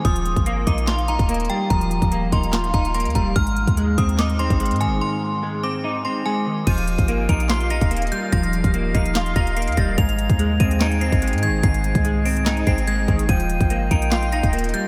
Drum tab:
CC |--------------------------------|--------------------------------|--------------------------------|--------------------------------|
HH |x-x-x-x-x---x-x-x-x-x-x-xxxxx---|x-x-x-x-x---x-x-x-x-x-x-xxxxx---|x-x-x-x-x---x-x-x-x-x-x-xxxxx---|--------------------------------|
CP |----------------x---------------|----------------x---------------|----------------x---------------|--------------------------------|
SD |----------------o---------------|----------------o---------------|----------------o---------------|--------------------------------|
BD |o-----o-----o---------o---------|o-----o-----o-------o-------o---|o-----o-----o---------o---------|--------------------------------|

CC |x-------------------------------|--------------------------------|--------------------------------|--------------------------------|
HH |x-x-x-x-x---x-x-x-x-x-x-xxxxx---|x-x-x-x-x---x-x-x-x-x-x-xxxxx---|x-x-x-x-x---x-x-x-x-x-x-xxxxx---|x-x-x-x-x---o-x-x-x-x-x-x---x-x-|
CP |----------------x---------------|----------------x---------------|----------------x---------------|----------------x---------------|
SD |----------------o---------------|----------------o---------------|----------------o---------------|----------------o---------------|
BD |o-----o-----o---------o---------|o-----o-----o-------o-------o---|o-----o-----o---------o---------|o-----o-------------o-------o---|

CC |--------------------------------|
HH |x-x-x-x-x---x-x-x-x-x-x-xxxxx---|
CP |----------------x---------------|
SD |----------------o---------------|
BD |o-----o-----o---------o---------|